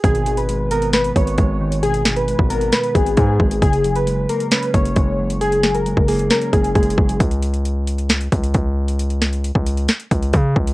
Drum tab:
HH |x--x--x--x--x-----x--x--x--x--x--x--x--------x--|x--x--x--x--x-----x--x--x--x--x--x--x--------x--|x--x--x--x--x-----x--x--x--x--x--x--x--------x--|x--x--x--x--x-----o--x--x--x--x--x--x-x-x----x--|
SD |------------------------o-----------------------|------o-----------------o-----------------------|------------------------o-----------------------|------o-----------------o-----------------------|
BD |o-----------------------------o-----o-----------|---------------o--------------o-----o-----o-----|o-----------------------------o-----o-----------|---------------o--------------o-----o-----o-----|

HH |x--x--x--x--x-----x--x--x--x--x--x--x--------x--|x--x--x--x--x-----x--x--x--x--x--x--x--------x--|
SD |------------------------o-----------------------|------o-----------------o-----------------------|
BD |o-----------------------------o-----o-----------|---------------o--------------o-----o-----o-----|